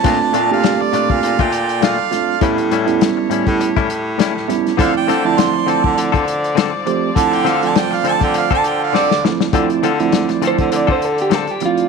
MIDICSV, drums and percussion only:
0, 0, Header, 1, 2, 480
1, 0, Start_track
1, 0, Key_signature, -1, "minor"
1, 0, Tempo, 593472
1, 36, Time_signature, 4, 2, 24, 8
1, 9613, End_track
2, 0, Start_track
2, 0, Title_t, "Drums"
2, 34, Note_on_c, 9, 42, 83
2, 34, Note_on_c, 9, 55, 88
2, 37, Note_on_c, 9, 36, 120
2, 115, Note_off_c, 9, 42, 0
2, 115, Note_off_c, 9, 55, 0
2, 118, Note_off_c, 9, 36, 0
2, 274, Note_on_c, 9, 42, 66
2, 355, Note_off_c, 9, 42, 0
2, 514, Note_on_c, 9, 42, 84
2, 520, Note_on_c, 9, 38, 101
2, 595, Note_off_c, 9, 42, 0
2, 601, Note_off_c, 9, 38, 0
2, 755, Note_on_c, 9, 42, 72
2, 835, Note_off_c, 9, 42, 0
2, 887, Note_on_c, 9, 36, 83
2, 968, Note_off_c, 9, 36, 0
2, 995, Note_on_c, 9, 42, 81
2, 1076, Note_off_c, 9, 42, 0
2, 1123, Note_on_c, 9, 42, 41
2, 1126, Note_on_c, 9, 36, 91
2, 1204, Note_off_c, 9, 42, 0
2, 1206, Note_off_c, 9, 36, 0
2, 1233, Note_on_c, 9, 42, 70
2, 1314, Note_off_c, 9, 42, 0
2, 1367, Note_on_c, 9, 42, 47
2, 1448, Note_off_c, 9, 42, 0
2, 1475, Note_on_c, 9, 42, 89
2, 1481, Note_on_c, 9, 38, 101
2, 1556, Note_off_c, 9, 42, 0
2, 1561, Note_off_c, 9, 38, 0
2, 1717, Note_on_c, 9, 42, 67
2, 1723, Note_on_c, 9, 38, 35
2, 1798, Note_off_c, 9, 42, 0
2, 1804, Note_off_c, 9, 38, 0
2, 1951, Note_on_c, 9, 42, 81
2, 1953, Note_on_c, 9, 36, 116
2, 2032, Note_off_c, 9, 42, 0
2, 2034, Note_off_c, 9, 36, 0
2, 2087, Note_on_c, 9, 42, 41
2, 2168, Note_off_c, 9, 42, 0
2, 2196, Note_on_c, 9, 42, 65
2, 2276, Note_off_c, 9, 42, 0
2, 2326, Note_on_c, 9, 42, 39
2, 2407, Note_off_c, 9, 42, 0
2, 2436, Note_on_c, 9, 42, 83
2, 2442, Note_on_c, 9, 38, 113
2, 2517, Note_off_c, 9, 42, 0
2, 2523, Note_off_c, 9, 38, 0
2, 2676, Note_on_c, 9, 42, 69
2, 2757, Note_off_c, 9, 42, 0
2, 2804, Note_on_c, 9, 42, 39
2, 2805, Note_on_c, 9, 36, 85
2, 2885, Note_off_c, 9, 42, 0
2, 2886, Note_off_c, 9, 36, 0
2, 2918, Note_on_c, 9, 42, 79
2, 2999, Note_off_c, 9, 42, 0
2, 3046, Note_on_c, 9, 36, 89
2, 3047, Note_on_c, 9, 42, 35
2, 3127, Note_off_c, 9, 36, 0
2, 3128, Note_off_c, 9, 42, 0
2, 3153, Note_on_c, 9, 42, 63
2, 3234, Note_off_c, 9, 42, 0
2, 3393, Note_on_c, 9, 42, 87
2, 3398, Note_on_c, 9, 38, 110
2, 3474, Note_off_c, 9, 42, 0
2, 3479, Note_off_c, 9, 38, 0
2, 3535, Note_on_c, 9, 38, 35
2, 3616, Note_off_c, 9, 38, 0
2, 3638, Note_on_c, 9, 42, 61
2, 3644, Note_on_c, 9, 38, 37
2, 3719, Note_off_c, 9, 42, 0
2, 3725, Note_off_c, 9, 38, 0
2, 3774, Note_on_c, 9, 42, 37
2, 3779, Note_on_c, 9, 38, 35
2, 3855, Note_off_c, 9, 42, 0
2, 3860, Note_off_c, 9, 38, 0
2, 3873, Note_on_c, 9, 36, 116
2, 3876, Note_on_c, 9, 42, 83
2, 3954, Note_off_c, 9, 36, 0
2, 3957, Note_off_c, 9, 42, 0
2, 4116, Note_on_c, 9, 42, 62
2, 4122, Note_on_c, 9, 38, 31
2, 4197, Note_off_c, 9, 42, 0
2, 4203, Note_off_c, 9, 38, 0
2, 4352, Note_on_c, 9, 42, 91
2, 4357, Note_on_c, 9, 38, 105
2, 4433, Note_off_c, 9, 42, 0
2, 4438, Note_off_c, 9, 38, 0
2, 4593, Note_on_c, 9, 42, 70
2, 4674, Note_off_c, 9, 42, 0
2, 4724, Note_on_c, 9, 36, 88
2, 4805, Note_off_c, 9, 36, 0
2, 4835, Note_on_c, 9, 42, 80
2, 4915, Note_off_c, 9, 42, 0
2, 4965, Note_on_c, 9, 36, 84
2, 4970, Note_on_c, 9, 42, 41
2, 5046, Note_off_c, 9, 36, 0
2, 5051, Note_off_c, 9, 42, 0
2, 5078, Note_on_c, 9, 42, 66
2, 5159, Note_off_c, 9, 42, 0
2, 5211, Note_on_c, 9, 42, 42
2, 5291, Note_off_c, 9, 42, 0
2, 5316, Note_on_c, 9, 42, 84
2, 5321, Note_on_c, 9, 38, 120
2, 5396, Note_off_c, 9, 42, 0
2, 5402, Note_off_c, 9, 38, 0
2, 5554, Note_on_c, 9, 42, 60
2, 5635, Note_off_c, 9, 42, 0
2, 5792, Note_on_c, 9, 36, 113
2, 5796, Note_on_c, 9, 42, 93
2, 5873, Note_off_c, 9, 36, 0
2, 5877, Note_off_c, 9, 42, 0
2, 5929, Note_on_c, 9, 42, 42
2, 6010, Note_off_c, 9, 42, 0
2, 6037, Note_on_c, 9, 42, 63
2, 6042, Note_on_c, 9, 38, 34
2, 6118, Note_off_c, 9, 42, 0
2, 6123, Note_off_c, 9, 38, 0
2, 6168, Note_on_c, 9, 42, 46
2, 6249, Note_off_c, 9, 42, 0
2, 6272, Note_on_c, 9, 42, 81
2, 6277, Note_on_c, 9, 38, 111
2, 6352, Note_off_c, 9, 42, 0
2, 6358, Note_off_c, 9, 38, 0
2, 6413, Note_on_c, 9, 38, 35
2, 6494, Note_off_c, 9, 38, 0
2, 6507, Note_on_c, 9, 42, 68
2, 6587, Note_off_c, 9, 42, 0
2, 6641, Note_on_c, 9, 36, 89
2, 6642, Note_on_c, 9, 42, 37
2, 6722, Note_off_c, 9, 36, 0
2, 6723, Note_off_c, 9, 42, 0
2, 6746, Note_on_c, 9, 42, 78
2, 6827, Note_off_c, 9, 42, 0
2, 6879, Note_on_c, 9, 42, 38
2, 6880, Note_on_c, 9, 36, 88
2, 6960, Note_off_c, 9, 42, 0
2, 6961, Note_off_c, 9, 36, 0
2, 6989, Note_on_c, 9, 42, 60
2, 7070, Note_off_c, 9, 42, 0
2, 7236, Note_on_c, 9, 38, 65
2, 7316, Note_off_c, 9, 38, 0
2, 7370, Note_on_c, 9, 38, 71
2, 7451, Note_off_c, 9, 38, 0
2, 7480, Note_on_c, 9, 38, 96
2, 7561, Note_off_c, 9, 38, 0
2, 7607, Note_on_c, 9, 38, 87
2, 7687, Note_off_c, 9, 38, 0
2, 7708, Note_on_c, 9, 42, 83
2, 7709, Note_on_c, 9, 36, 107
2, 7789, Note_off_c, 9, 36, 0
2, 7789, Note_off_c, 9, 42, 0
2, 7844, Note_on_c, 9, 42, 39
2, 7925, Note_off_c, 9, 42, 0
2, 7953, Note_on_c, 9, 42, 62
2, 8034, Note_off_c, 9, 42, 0
2, 8085, Note_on_c, 9, 42, 41
2, 8166, Note_off_c, 9, 42, 0
2, 8188, Note_on_c, 9, 42, 78
2, 8194, Note_on_c, 9, 38, 98
2, 8269, Note_off_c, 9, 42, 0
2, 8275, Note_off_c, 9, 38, 0
2, 8322, Note_on_c, 9, 42, 39
2, 8327, Note_on_c, 9, 38, 35
2, 8403, Note_off_c, 9, 42, 0
2, 8408, Note_off_c, 9, 38, 0
2, 8430, Note_on_c, 9, 42, 69
2, 8511, Note_off_c, 9, 42, 0
2, 8560, Note_on_c, 9, 42, 41
2, 8562, Note_on_c, 9, 36, 77
2, 8641, Note_off_c, 9, 42, 0
2, 8643, Note_off_c, 9, 36, 0
2, 8669, Note_on_c, 9, 42, 82
2, 8750, Note_off_c, 9, 42, 0
2, 8803, Note_on_c, 9, 36, 89
2, 8884, Note_off_c, 9, 36, 0
2, 8913, Note_on_c, 9, 42, 65
2, 8994, Note_off_c, 9, 42, 0
2, 9043, Note_on_c, 9, 42, 41
2, 9124, Note_off_c, 9, 42, 0
2, 9147, Note_on_c, 9, 42, 78
2, 9153, Note_on_c, 9, 38, 109
2, 9228, Note_off_c, 9, 42, 0
2, 9234, Note_off_c, 9, 38, 0
2, 9280, Note_on_c, 9, 42, 38
2, 9361, Note_off_c, 9, 42, 0
2, 9385, Note_on_c, 9, 42, 62
2, 9466, Note_off_c, 9, 42, 0
2, 9524, Note_on_c, 9, 42, 40
2, 9605, Note_off_c, 9, 42, 0
2, 9613, End_track
0, 0, End_of_file